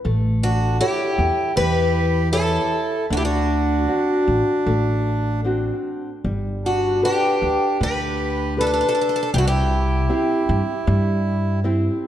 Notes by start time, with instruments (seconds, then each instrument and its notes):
0.05 upright bass A1, nylon-string guitar A3
0.42 accordion D4, twelve-string acoustic guitar F#4
0.80 accordion E4, twelve-string acoustic guitar G4, nylon-string guitar G4 A4 C#5
1.18 upright bass E2
1.56 upright bass E2, nylon-string guitar E3, accordion G4, twelve-string acoustic guitar B4
2.33 accordion E4, nylon-string guitar G4 A4 C#5, twelve-string acoustic guitar A4
3.10 upright bass D2, nylon-string guitar D3, accordion D4, twelve-string acoustic guitar F#4
3.16 accordion E4, twelve-string acoustic guitar G4
3.23 accordion D4, twelve-string acoustic guitar F#4
3.88 nylon-string guitar C4 D4 F#4
4.28 upright bass A1
4.66 upright bass A1, nylon-string guitar A3
5.45 nylon-string guitar C4 D4 F#4
6.24 upright bass G1, nylon-string guitar G3
6.64 accordion D4, twelve-string acoustic guitar F#4
7.02 accordion D4, nylon-string guitar G4 A4 B4, twelve-string acoustic guitar G4
7.42 upright bass D2
7.80 upright bass D2, nylon-string guitar D3, accordion G4, twelve-string acoustic guitar B4
8.57 accordion D4, nylon-string guitar G4 A4 B4, twelve-string acoustic guitar A4
8.67 twelve-string acoustic guitar A4
8.74 twelve-string acoustic guitar A4
8.81 twelve-string acoustic guitar A4
8.89 twelve-string acoustic guitar A4
8.95 twelve-string acoustic guitar A4
9.01 twelve-string acoustic guitar A4
9.09 twelve-string acoustic guitar A4
9.16 twelve-string acoustic guitar A4
9.23 twelve-string acoustic guitar A4
9.34 upright bass C2, nylon-string guitar C3, accordion E4, twelve-string acoustic guitar G4
9.38 accordion D4, twelve-string acoustic guitar F#4
9.47 accordion E4, twelve-string acoustic guitar G4
10.09 nylon-string guitar C4 E4 G4
10.49 upright bass G2
10.87 upright bass G2, nylon-string guitar G3
11.64 nylon-string guitar C4 E4 G4